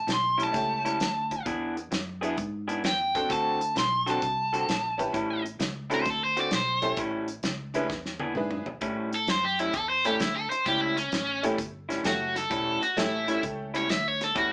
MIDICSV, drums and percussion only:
0, 0, Header, 1, 2, 480
1, 0, Start_track
1, 0, Tempo, 460829
1, 1518, Time_signature, 4, 2, 24, 8
1, 15130, End_track
2, 0, Start_track
2, 0, Title_t, "Drums"
2, 83, Note_on_c, 9, 42, 79
2, 93, Note_on_c, 9, 38, 97
2, 187, Note_off_c, 9, 42, 0
2, 197, Note_off_c, 9, 38, 0
2, 413, Note_on_c, 9, 42, 60
2, 517, Note_off_c, 9, 42, 0
2, 563, Note_on_c, 9, 42, 77
2, 565, Note_on_c, 9, 36, 106
2, 573, Note_on_c, 9, 38, 28
2, 667, Note_off_c, 9, 42, 0
2, 669, Note_off_c, 9, 36, 0
2, 677, Note_off_c, 9, 38, 0
2, 891, Note_on_c, 9, 42, 65
2, 995, Note_off_c, 9, 42, 0
2, 1044, Note_on_c, 9, 42, 73
2, 1053, Note_on_c, 9, 38, 104
2, 1148, Note_off_c, 9, 42, 0
2, 1157, Note_off_c, 9, 38, 0
2, 1367, Note_on_c, 9, 36, 74
2, 1368, Note_on_c, 9, 42, 59
2, 1471, Note_off_c, 9, 36, 0
2, 1472, Note_off_c, 9, 42, 0
2, 1522, Note_on_c, 9, 36, 105
2, 1522, Note_on_c, 9, 42, 72
2, 1626, Note_off_c, 9, 36, 0
2, 1626, Note_off_c, 9, 42, 0
2, 1845, Note_on_c, 9, 42, 53
2, 1949, Note_off_c, 9, 42, 0
2, 1996, Note_on_c, 9, 42, 69
2, 2005, Note_on_c, 9, 38, 99
2, 2100, Note_off_c, 9, 42, 0
2, 2109, Note_off_c, 9, 38, 0
2, 2321, Note_on_c, 9, 42, 56
2, 2425, Note_off_c, 9, 42, 0
2, 2474, Note_on_c, 9, 42, 74
2, 2478, Note_on_c, 9, 36, 98
2, 2578, Note_off_c, 9, 42, 0
2, 2582, Note_off_c, 9, 36, 0
2, 2801, Note_on_c, 9, 42, 58
2, 2905, Note_off_c, 9, 42, 0
2, 2957, Note_on_c, 9, 42, 70
2, 2966, Note_on_c, 9, 38, 106
2, 3061, Note_off_c, 9, 42, 0
2, 3071, Note_off_c, 9, 38, 0
2, 3282, Note_on_c, 9, 36, 81
2, 3283, Note_on_c, 9, 42, 61
2, 3386, Note_off_c, 9, 36, 0
2, 3387, Note_off_c, 9, 42, 0
2, 3437, Note_on_c, 9, 36, 100
2, 3437, Note_on_c, 9, 42, 81
2, 3541, Note_off_c, 9, 36, 0
2, 3541, Note_off_c, 9, 42, 0
2, 3763, Note_on_c, 9, 42, 61
2, 3867, Note_off_c, 9, 42, 0
2, 3917, Note_on_c, 9, 42, 71
2, 3926, Note_on_c, 9, 38, 98
2, 4021, Note_off_c, 9, 42, 0
2, 4030, Note_off_c, 9, 38, 0
2, 4244, Note_on_c, 9, 42, 57
2, 4348, Note_off_c, 9, 42, 0
2, 4396, Note_on_c, 9, 42, 76
2, 4397, Note_on_c, 9, 36, 102
2, 4501, Note_off_c, 9, 36, 0
2, 4501, Note_off_c, 9, 42, 0
2, 4725, Note_on_c, 9, 42, 64
2, 4829, Note_off_c, 9, 42, 0
2, 4882, Note_on_c, 9, 42, 80
2, 4891, Note_on_c, 9, 38, 98
2, 4986, Note_off_c, 9, 42, 0
2, 4996, Note_off_c, 9, 38, 0
2, 5202, Note_on_c, 9, 36, 76
2, 5205, Note_on_c, 9, 42, 64
2, 5306, Note_off_c, 9, 36, 0
2, 5309, Note_off_c, 9, 42, 0
2, 5356, Note_on_c, 9, 36, 101
2, 5359, Note_on_c, 9, 42, 79
2, 5460, Note_off_c, 9, 36, 0
2, 5463, Note_off_c, 9, 42, 0
2, 5684, Note_on_c, 9, 42, 60
2, 5788, Note_off_c, 9, 42, 0
2, 5830, Note_on_c, 9, 42, 72
2, 5839, Note_on_c, 9, 38, 101
2, 5934, Note_off_c, 9, 42, 0
2, 5943, Note_off_c, 9, 38, 0
2, 6157, Note_on_c, 9, 42, 52
2, 6261, Note_off_c, 9, 42, 0
2, 6305, Note_on_c, 9, 42, 69
2, 6309, Note_on_c, 9, 36, 109
2, 6314, Note_on_c, 9, 38, 31
2, 6409, Note_off_c, 9, 42, 0
2, 6413, Note_off_c, 9, 36, 0
2, 6418, Note_off_c, 9, 38, 0
2, 6635, Note_on_c, 9, 42, 60
2, 6739, Note_off_c, 9, 42, 0
2, 6779, Note_on_c, 9, 42, 73
2, 6788, Note_on_c, 9, 38, 111
2, 6883, Note_off_c, 9, 42, 0
2, 6892, Note_off_c, 9, 38, 0
2, 7104, Note_on_c, 9, 42, 62
2, 7109, Note_on_c, 9, 36, 78
2, 7208, Note_off_c, 9, 42, 0
2, 7213, Note_off_c, 9, 36, 0
2, 7255, Note_on_c, 9, 42, 84
2, 7262, Note_on_c, 9, 36, 103
2, 7360, Note_off_c, 9, 42, 0
2, 7366, Note_off_c, 9, 36, 0
2, 7582, Note_on_c, 9, 42, 58
2, 7686, Note_off_c, 9, 42, 0
2, 7737, Note_on_c, 9, 42, 80
2, 7747, Note_on_c, 9, 38, 96
2, 7842, Note_off_c, 9, 42, 0
2, 7851, Note_off_c, 9, 38, 0
2, 8066, Note_on_c, 9, 42, 61
2, 8170, Note_off_c, 9, 42, 0
2, 8226, Note_on_c, 9, 36, 99
2, 8232, Note_on_c, 9, 38, 55
2, 8330, Note_off_c, 9, 36, 0
2, 8336, Note_off_c, 9, 38, 0
2, 8392, Note_on_c, 9, 38, 54
2, 8496, Note_off_c, 9, 38, 0
2, 8536, Note_on_c, 9, 48, 72
2, 8640, Note_off_c, 9, 48, 0
2, 8697, Note_on_c, 9, 47, 64
2, 8801, Note_off_c, 9, 47, 0
2, 8860, Note_on_c, 9, 45, 86
2, 8964, Note_off_c, 9, 45, 0
2, 9021, Note_on_c, 9, 43, 80
2, 9125, Note_off_c, 9, 43, 0
2, 9178, Note_on_c, 9, 42, 74
2, 9184, Note_on_c, 9, 36, 102
2, 9282, Note_off_c, 9, 42, 0
2, 9288, Note_off_c, 9, 36, 0
2, 9506, Note_on_c, 9, 42, 58
2, 9611, Note_off_c, 9, 42, 0
2, 9661, Note_on_c, 9, 42, 68
2, 9670, Note_on_c, 9, 38, 94
2, 9765, Note_off_c, 9, 42, 0
2, 9774, Note_off_c, 9, 38, 0
2, 9989, Note_on_c, 9, 42, 55
2, 10093, Note_off_c, 9, 42, 0
2, 10138, Note_on_c, 9, 42, 70
2, 10144, Note_on_c, 9, 36, 94
2, 10242, Note_off_c, 9, 42, 0
2, 10248, Note_off_c, 9, 36, 0
2, 10465, Note_on_c, 9, 42, 61
2, 10569, Note_off_c, 9, 42, 0
2, 10621, Note_on_c, 9, 42, 76
2, 10630, Note_on_c, 9, 38, 101
2, 10725, Note_off_c, 9, 42, 0
2, 10734, Note_off_c, 9, 38, 0
2, 10952, Note_on_c, 9, 42, 65
2, 11056, Note_off_c, 9, 42, 0
2, 11102, Note_on_c, 9, 42, 82
2, 11105, Note_on_c, 9, 36, 98
2, 11206, Note_off_c, 9, 42, 0
2, 11209, Note_off_c, 9, 36, 0
2, 11431, Note_on_c, 9, 42, 58
2, 11535, Note_off_c, 9, 42, 0
2, 11582, Note_on_c, 9, 42, 76
2, 11591, Note_on_c, 9, 38, 92
2, 11686, Note_off_c, 9, 42, 0
2, 11696, Note_off_c, 9, 38, 0
2, 11912, Note_on_c, 9, 42, 61
2, 12016, Note_off_c, 9, 42, 0
2, 12066, Note_on_c, 9, 36, 100
2, 12067, Note_on_c, 9, 42, 82
2, 12171, Note_off_c, 9, 36, 0
2, 12172, Note_off_c, 9, 42, 0
2, 12397, Note_on_c, 9, 42, 66
2, 12406, Note_on_c, 9, 38, 33
2, 12501, Note_off_c, 9, 42, 0
2, 12510, Note_off_c, 9, 38, 0
2, 12545, Note_on_c, 9, 42, 83
2, 12554, Note_on_c, 9, 38, 104
2, 12649, Note_off_c, 9, 42, 0
2, 12658, Note_off_c, 9, 38, 0
2, 12875, Note_on_c, 9, 42, 66
2, 12884, Note_on_c, 9, 38, 30
2, 12979, Note_off_c, 9, 42, 0
2, 12988, Note_off_c, 9, 38, 0
2, 13028, Note_on_c, 9, 36, 112
2, 13030, Note_on_c, 9, 42, 79
2, 13132, Note_off_c, 9, 36, 0
2, 13134, Note_off_c, 9, 42, 0
2, 13359, Note_on_c, 9, 42, 56
2, 13463, Note_off_c, 9, 42, 0
2, 13511, Note_on_c, 9, 42, 76
2, 13521, Note_on_c, 9, 38, 105
2, 13615, Note_off_c, 9, 42, 0
2, 13625, Note_off_c, 9, 38, 0
2, 13834, Note_on_c, 9, 42, 59
2, 13938, Note_off_c, 9, 42, 0
2, 13991, Note_on_c, 9, 42, 71
2, 13992, Note_on_c, 9, 36, 98
2, 14095, Note_off_c, 9, 42, 0
2, 14096, Note_off_c, 9, 36, 0
2, 14318, Note_on_c, 9, 42, 60
2, 14423, Note_off_c, 9, 42, 0
2, 14472, Note_on_c, 9, 42, 76
2, 14482, Note_on_c, 9, 38, 101
2, 14576, Note_off_c, 9, 42, 0
2, 14586, Note_off_c, 9, 38, 0
2, 14801, Note_on_c, 9, 42, 59
2, 14811, Note_on_c, 9, 38, 32
2, 14906, Note_off_c, 9, 42, 0
2, 14915, Note_off_c, 9, 38, 0
2, 14953, Note_on_c, 9, 42, 75
2, 14955, Note_on_c, 9, 36, 105
2, 15057, Note_off_c, 9, 42, 0
2, 15059, Note_off_c, 9, 36, 0
2, 15130, End_track
0, 0, End_of_file